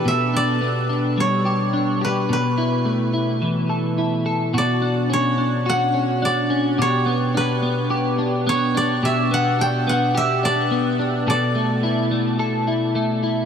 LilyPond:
<<
  \new Staff \with { instrumentName = "Koto" } { \time 4/4 \key g \lydian \tempo 4 = 107 e''8 d''4. cis''4. b'8 | b'2.~ b'8 r8 | d''4 cis''4 fis''4 d''4 | cis''4 b'2 cis''8 d''8 |
e''8 fis''8 g''8 fis''8 e''8 d''4. | d''4. r2 r8 | }
  \new Staff \with { instrumentName = "Clean electric guitar" } { \time 4/4 \key g \lydian b,8 d'8 b8 d'8 g8 g'8 d'8 g'8 | b,8 e'8 a8 e'8 e8 a'8 e'8 a'8 | <b, fis'>8 d'8 cis'8 d'8 fis'8 cis'8 d'8 cis'8 | <b, g'>8 b8 d'8 b8 g'8 d'8 b8 d'8 |
<b, g'>8 b8 d'8 b8 g'8 d'8 b8 d'8 | <b, a'>8 a8 e'8 a8 a'8 e'8 a8 e'8 | }
>>